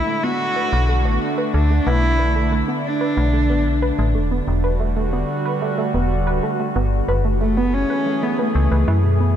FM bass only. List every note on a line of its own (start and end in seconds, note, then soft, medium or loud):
0.73 1.07 B1 medium
1.05 1.18 A1 medium
1.54 1.80 D2 loud
1.87 2.63 B1 loud
3.17 3.51 B1 medium
3.50 3.68 A1 medium
3.66 3.92 B1 medium
3.99 4.16 A1 loud
4.15 4.41 E1 medium
4.48 5.24 E1 loud
5.94 6.28 E1 medium
6.27 6.40 D1 medium
6.76 7.02 G1 loud
7.09 7.85 F#1 loud
8.55 8.68 C#2 loud
8.72 8.85 C#2 medium
8.88 9.36 F#2 medium